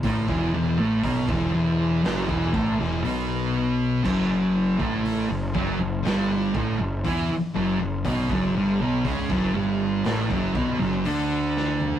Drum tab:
CC |----------------|x---------------|----------------|
HH |o---o---o---o---|----o---o---o---|o---o---o---o---|
SD |--------o--o----|--------o-------|--------o--o--o-|
FT |----------------|----------------|---------------o|
BD |oo--oo---oo-----|o--o--o---o-o---|oo--oo---oo-----|